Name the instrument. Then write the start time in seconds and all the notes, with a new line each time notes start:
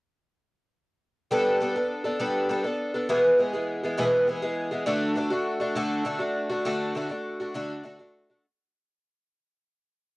twelve-string acoustic guitar
1.31 G3 B3 D4 A4
1.60 G3 B3 D4 A4
1.76 B3 D4 A4
2.04 B3 D4 A4
2.19 G3 B3 D4 A4
2.49 G3 B3 D4 A4
2.64 B3 D4 A4
2.94 B3 D4 A4
3.09 E2 B2 E3 G#3 B3 G#4
3.38 E3 G#3 B3 G#4
3.53 E3 G#3 B3 G#4
3.83 E3 G#3 B3 G#4
3.97 E2 B2 E3 G#3 B3 G#4
4.27 E3 G#3 B3 G#4
4.42 E3 G#3 B3 G#4
4.71 E3 G#3 B3 G#4
4.86 D3 A3 D4 F#4
5.15 D3 A3 D4 F#4
5.30 A3 D4 F#4
5.60 A3 D4 F#4
5.76 D3 A3 D4 F#4
6.05 D3 A3 D4 F#4
6.19 A3 D4 F#4
6.50 A3 D4 F#4
6.65 D3 A3 D4 F#4
6.95 D3 A3 D4 F#4
7.09 A3 D4 F#4
7.40 A3 D4 F#4
7.55 D3 A3 D4 F#4
7.84 D3 A3 D4 F#4
7.99 A3 D4 F#4
8.30 A3 D4 F#4